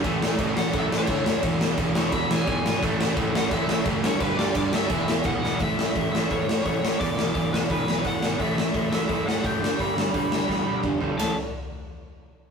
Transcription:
<<
  \new Staff \with { instrumentName = "Lead electric guitar" } { \time 4/4 \key e \mixolydian \tempo 4 = 172 r4. fis''8 e''8 cis''4. | r4. cis'''8 b''8 gis''4. | r4. fis''8 e''4 r8 cis''8 | b'8 d''8 d''8 e''4. fis''4 |
e''4. e''8 cis''4 cis''4 | d''4. b'8 b'4 fis''4 | e''4. e''4 fis''8 g''4 | b''2. r4 |
a''8 r2. r8 | }
  \new Staff \with { instrumentName = "Distorted electric guitar" } { \clef bass \time 4/4 \key e \mixolydian <a, e a>1 | <e, b, e>1 | <a, e a>2.~ <a, e a>8 <g, d g>8~ | <g, d g>2 <e, b, e>2 |
r1 | r1 | r1 | r1 |
r1 | }
  \new Staff \with { instrumentName = "Overdriven electric guitar" } { \clef bass \time 4/4 \key e \mixolydian <a, e a>8 <a, e a>8 <a, e a>8 <a, e a>8 <a, e a>8 <a, e a>8 <a, e a>8 <a, e a>8 | <e, b, e>8 <e, b, e>8 <e, b, e>8 <e, b, e>8 <e, b, e>8 <e, b, e>8 <e, b, e>8 <e, b, e>8 | <a, e a>8 <a, e a>8 <a, e a>8 <a, e a>8 <a, e a>8 <a, e a>8 <a, e a>8 <g, d g>8 | <g, d g>8 <g, d g>8 <g, d g>8 <g, d g>8 <e, b, e>8 <e, b, e>8 <e, b, e>8 <e, b, e>8 |
<a, e a>8 <a, e a>8 <a, e a>8 <a, e a>8 <a, e a>8 <a, e a>8 <a, e a>8 <a, e a>8 | <e, b, e>8 <e, b, e>8 <e, b, e>8 <e, b, e>8 <e, b, e>8 <e, b, e>8 <e, b, e>8 <e, b, e>8 | <a, e a>8 <a, e a>8 <a, e a>8 <a, e a>8 <a, e a>8 <a, e a>8 <a, e a>8 <g, d g>8 | <g, d g>8 <g, d g>8 <g, d g>8 <g, d g>8 <g, d g>8 <g, d g>8 <g, d g>8 <g, d g>8 |
<a, e a>8 r2. r8 | }
  \new Staff \with { instrumentName = "Overdriven electric guitar" } { \clef bass \time 4/4 \key e \mixolydian <a, e a>8 <a, e a>8 <a, e a>8 <a, e a>8 <a, e a>8 <a, e a>8 <a, e a>8 <a, e a>8 | <e, b, e>8 <e, b, e>8 <e, b, e>8 <e, b, e>8 <e, b, e>8 <e, b, e>8 <e, b, e>8 <e, b, e>8 | <a, e a>8 <a, e a>8 <a, e a>8 <a, e a>8 <a, e a>8 <a, e a>8 <a, e a>8 <g, d g>8 | <g, d g>8 <g, d g>8 <g, d g>8 <g, d g>8 <e, b, e>8 <e, b, e>8 <e, b, e>8 <e, b, e>8 |
<a, e a>8 <a, e a>8 <a, e a>8 <a, e a>8 <a, e a>8 <a, e a>8 <a, e a>8 <a, e a>8 | <e, b, e>8 <e, b, e>8 <e, b, e>8 <e, b, e>8 <e, b, e>8 <e, b, e>8 <e, b, e>8 <e, b, e>8 | <a, e a>8 <a, e a>8 <a, e a>8 <a, e a>8 <a, e a>8 <a, e a>8 <a, e a>8 <g, d g>8 | <g, d g>8 <g, d g>8 <g, d g>8 <g, d g>8 <g, d g>8 <g, d g>8 <g, d g>8 <g, d g>8 |
<a, e a>8 r2. r8 | }
  \new Staff \with { instrumentName = "Picked electric bass" } { \clef bass \time 4/4 \key e \mixolydian a,,4 a,,8 a,,8 a,,8 a,,8 d,8 fis,,8 | e,,8 e,,8 e,,8 e,8 e,,8 e,,8 b,,8 gis,,8 | a,,4 a,,8 a,,8 a,,8 a,,8 fis,,8 g,,8 | g,,8 g,,8 g,,8 g,8 e,,8 e,,8 b,,8 e,8 |
a,,8 a,,8 a,,8 a,,8 e,8 a,8 a,,8 a,,8 | e,,8 e,,8 e,,8 e,,8 d,8 b,,8 e,,8 gis,,8 | a,,8 a,,8 a,,8 a,,8 e,8 a,8 a,,8 g,,8 | g,,8 g,,8 g,,8 g,,8 e,,8 d,8 g,,8 g,,8 |
a,,8 r2. r8 | }
  \new DrumStaff \with { instrumentName = "Drums" } \drummode { \time 4/4 <cymc bd>8 sn8 <cymc bd>8 sn8 <cymc bd>8 sn8 <cymc bd>8 sn8 | <cymc bd>8 sn8 <cymc bd>8 sn8 <cymc bd>8 sn8 <cymc bd>8 sn8 | <cymc bd>8 sn8 <cymc bd>8 sn8 <cymc bd>8 sn8 <cymc bd>8 sn8 | <cymc bd>8 sn8 <cymc bd>8 sn8 <cymc bd>8 sn8 <cymc bd>8 sn8 |
<hho bd>8 sn8 <hho bd>8 sn8 <hho bd>8 sn8 <hho bd>8 sn8 | <hho bd>8 sn8 <hho bd>8 sn8 <hho bd>8 sn8 <hho bd>8 sn8 | <hho bd>8 sn8 <hho bd>8 sn8 <hho bd>8 sn8 <hho bd>8 sn8 | <hho bd>8 sn8 <hho bd>8 sn8 <bd sn>8 tommh8 <bd toml>8 tomfh8 |
<rb sn tomfh>4 r4 r4 r4 | }
>>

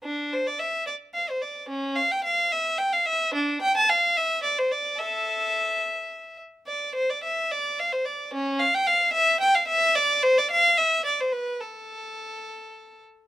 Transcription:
\new Staff \with { instrumentName = "Violin" } { \time 6/8 \key d \minor \tempo 4. = 73 << { d'8 c''16 d''16 e''8 d''8 f''16 c''16 d''8 | cis'8 f''16 g''16 f''8 e''8 g''16 f''16 e''8 | d'8 g''16 a''16 f''8 e''8 d''16 c''16 d''8 | e''2~ e''8 r8 |
d''8 c''16 d''16 e''8 d''8 f''16 c''16 d''8 | cis'8 f''16 g''16 f''8 e''8 g''16 f''16 e''8 | \key a \minor d''8 c''16 d''16 f''8 e''8 d''16 c''16 b'8 | a'2~ a'8 r8 | } \\ { r2. | r2. | r2. | a'4. r4. |
r2. | r2. | r2. | r2. | } >> }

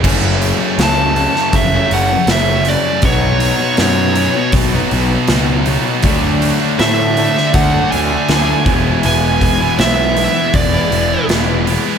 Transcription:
<<
  \new Staff \with { instrumentName = "Lead electric guitar" } { \time 4/4 \key fis \minor \tempo 4 = 80 r4 a''4 e''8 fis''8 e''8 d''8 | cis''4 cis''4 r2 | r4 e''4 fis''8 gis''4. | gis''4 e''4 d''4 r4 | }
  \new Staff \with { instrumentName = "Distorted electric guitar" } { \time 4/4 \key fis \minor <fis, cis fis a cis' fis'>16 <fis a cis' fis'>8 <fis a cis' fis'>16 <fis, cis fis a cis' fis'>8 <fis a cis' fis'>16 <fis a cis' fis'>8 <fis a cis' fis'>16 <fis a cis' fis'>16 <fis a cis' fis'>16 <fis, cis fis a cis' fis'>8 <fis a cis' fis'>16 <fis a cis' fis'>16 | <b, fis b dis' fis'>16 <b dis' fis'>8 <b dis' fis'>16 <b, fis b dis' fis'>8 <fis b dis' fis'>16 <b dis' fis'>8 <b dis' fis'>16 <fis b dis' fis'>16 <b dis' fis'>16 <b, fis b dis' fis'>8 <fis b dis' fis'>16 <b dis' fis'>16 | <d fis a d' fis'>16 <a d' fis'>8 <a d' fis'>16 <d fis a d' fis'>8 <fis a d' fis'>16 <a d' fis'>8 <a d' fis'>16 <fis a d' fis'>16 <a d' fis'>16 <d fis a d' fis'>8 <e gis b e'>16 <gis b e'>16 | <e gis b e'>16 <gis b e'>8 <gis b e'>16 <e gis b e'>8 <e gis b e'>16 <gis b e'>8 <gis b e'>16 <e gis b e'>16 <gis b e'>16 <e gis b e'>8 <e gis b e'>16 <gis b e'>16 | }
  \new Staff \with { instrumentName = "Distorted electric guitar" } { \time 4/4 \key fis \minor <fis, cis fis a cis'>8. <fis a cis'>16 <fis, cis fis a cis'>8 <cis fis a cis'>8. <fis a cis'>16 <cis fis a cis'>8 <fis, cis fis a cis'>16 <fis a cis'>16 <cis fis a cis'>8 | <b, fis b dis'>8. <fis b dis'>16 <b, fis b dis'>8 <b, fis b dis'>8. <fis b dis'>16 <b, fis b dis'>8 <b, fis b dis'>16 <fis b dis'>16 <b, fis b dis'>8 | <d fis a d'>8. <fis a d'>16 <d fis a d'>8 <d fis a d'>8. <fis a d'>16 <d fis a d'>8 <d fis a d'>16 <fis a d'>16 <e gis b e'>8 | <e gis b e'>8. <gis b e'>16 <e gis b e'>8 <e gis b e'>8. <gis b e'>16 <e gis b e'>8 <e gis b e'>16 <gis b e'>16 <e gis b e'>8 | }
  \new Staff \with { instrumentName = "Distorted electric guitar" } { \clef bass \time 4/4 \key fis \minor <fis, cis fis>1 | <b, fis b>1 | <d a d'>2.~ <d a d'>8 <e, b, e>8~ | <e, b, e>2.~ <e, b, e>8 r8 | }
  \new Staff \with { instrumentName = "Picked electric bass" } { \clef bass \time 4/4 \key fis \minor fis,,4 cis,4 fis,,8 fis,,8 fis,,4 | b,,4 fis,4 b,,8 b,,8 cis,4 | d,4 a,4 d,8 d,8 d,8 e,,8 | e,,4 b,,4 e,,8 e,,8 e,,4 | }
  \new DrumStaff \with { instrumentName = "Drums" } \drummode { \time 4/4 <cymc bd>8 hho8 <hho sn>8 hho16 sn16 <hho bd>8 hho8 <hho sn>8 hho8 | <hho bd>8 hho8 <hho sn>8 hho8 <hho bd>8 hho8 <hho sn>8 hho8 | <hho bd>8 hho8 <hho sn>8 hho16 sn16 <hho bd>8 hho8 <hho sn>8 <hho bd>8 | hho8 <hho bd>8 <hho sn>8 hho8 <hho bd>8 hho8 <hho sn>8 hho8 | }
>>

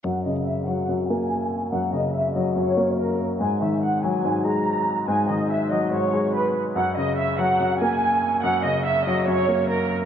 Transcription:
<<
  \new Staff \with { instrumentName = "Violin section" } { \time 4/4 \key fis \mixolydian \tempo 4 = 143 fis''8 dis''8 e''8 fis''4 gis''4. | fis''8 dis''8 e''8 dis''8 cis''4 ais'8 r8 | gis''8 e''8 fis''8 gis''4 ais''4. | gis''8 dis''8 e''8 dis''8 cis''4 b'8 r8 |
fis''8 dis''8 e''8 fis''4 gis''4. | fis''8 dis''8 e''8 dis''8 cis''4 ais'8 r8 | }
  \new Staff \with { instrumentName = "Felt piano" } { \clef bass \time 4/4 \key fis \mixolydian fis,8 cis4 fis8 fis,8 ais4. | fis,8 cis4 fis8 fis,8 ais4. | gis,8 dis4 fis8 gis,8 gis4. | gis,8 dis4 fis8 gis,8 gis4. |
fis,8 cis4 fis8 fis,8 ais4. | fis,8 cis4 fis8 fis,8 ais4. | }
>>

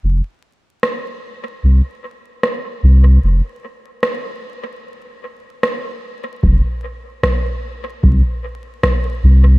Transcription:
<<
  \new Staff \with { instrumentName = "Sub bass" } { \clef bass \time 4/4 \key f \phrygian \tempo 4 = 75 f,,8 r4. c,8 r4 c,8 | f,,8 r2. r8 | f,,8 r4. c,8 r4 c,8 | }
  \new DrumStaff \with { instrumentName = "Drums" } \drummode { \time 4/4 r4 ss4 r4 ss4 | r4 ss4 r4 ss4 | bd4 <bd ss>4 bd4 <bd ss>4 | }
>>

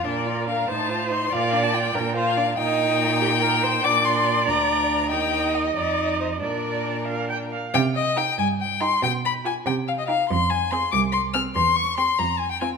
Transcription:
<<
  \new Staff \with { instrumentName = "Violin" } { \time 6/8 \key bes \major \tempo 4. = 94 d''4 f''8 a''4 c'''8 | f''8. a''16 g''4 f''4 | g''2. | d'''8 c'''4 bes''4. |
g''4 ees''8 d''4 c''8 | bes'2~ bes'8 r8 | \key c \minor g''8 ees''8 g''8 aes''8 g''8 c'''8 | g''8 b''8 aes''8 g''8 f''16 ees''16 f''8 |
c'''8 aes''8 c'''8 d'''8 c'''8 f'''8 | c'''8 des'''8 c'''8 bes''8 aes''16 g''16 aes''8 | }
  \new Staff \with { instrumentName = "Viola" } { \time 6/8 \key bes \major bes'4. c''4. | d''4. bes'8 c''8 d''8 | ees''4. g'8 bes'8 c''8 | d''2. |
ees''2. | d''4. f''8 g''8 f''8 | \key c \minor r4 ees'8 r4 ees'8 | r4 f'8 r4 ees'8 |
r4 c'8 r4 c'8 | r4 c'8 r4 c'8 | }
  \new Staff \with { instrumentName = "Violin" } { \time 6/8 \key bes \major d'8 f'8 d'8 ees'8 f'8 ees'8 | f'8 d'8 f'8 d'8 f'8 d'8 | ees'2. | d'4. d'4. |
ees'4. ees'4. | d'2~ d'8 r8 | \key c \minor r4 g'8 r4 g'8 | r4 g'8 r4 g'8 |
r4 aes'8 r4 aes'8 | r4 g'8 r4 f'8 | }
  \new Staff \with { instrumentName = "Cello" } { \clef bass \time 6/8 \key bes \major bes,4. a,4. | bes,4. bes,4. | bes,2. | bes,4. d,4. |
ees,4. f,4. | bes,2~ bes,8 r8 | \key c \minor c4. g,4. | b,4. c4. |
f,4. c,4. | e,4. f,4. | }
>>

